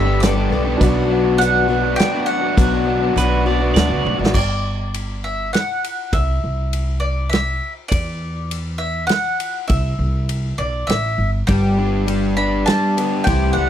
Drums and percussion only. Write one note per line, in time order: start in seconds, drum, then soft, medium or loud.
0.22 snare medium
0.22 closed hi-hat medium
0.81 kick loud
0.81 closed hi-hat medium
1.41 closed hi-hat medium
1.99 snare medium
1.99 closed hi-hat medium
2.58 kick loud
2.58 closed hi-hat medium
3.17 closed hi-hat medium
3.76 snare loud
3.76 closed hi-hat medium
4.06 high tom medium
4.26 snare medium
4.34 kick loud
4.34 crash loud
4.94 ride medium
5.54 snare medium
5.54 ride medium
5.84 ride medium
6.13 kick loud
6.13 ride medium
6.73 ride medium
7.33 snare medium
7.33 ride medium
7.92 kick loud
7.92 ride medium
8.51 ride medium
9.09 snare medium
9.09 ride medium
9.40 ride medium
9.69 kick loud
9.69 ride medium
10.29 ride medium
10.89 snare medium
10.89 ride medium
11.48 kick loud
11.48 ride medium
12.08 ride medium
12.67 snare medium
12.67 ride medium
12.98 ride medium
13.27 kick loud
13.27 ride medium